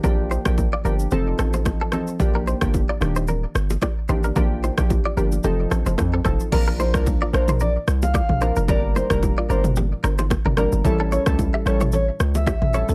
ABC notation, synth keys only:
X:1
M:4/4
L:1/16
Q:"Swing 16ths" 1/4=111
K:Bb
V:1 name="Synth keys"
[F,B,DG]3 [F,B,DG] z2 [F,B,DG]2 [F,CEA]6 [F,CEA]2 | [F,B,DG]3 [F,B,DG] z2 [E,B,DG]2 z6 [E,B,DG]2 | [F,B,DG]3 [F,B,DG] z2 [F,B,DG]2 [F,CEA]6 [F,CEA]2 | [F,B,DB]3 [F,B,DB]3 [F,B,DB]2 z6 [F,B,DB]2 |
[G,B,DB]3 [G,B,DB]3 [G,B,DB]2 z6 [G,B,DB]2 | [G,^C=EA]3 [G,CEA]3 [G,CEA]2 z6 [G,CEA]2 |]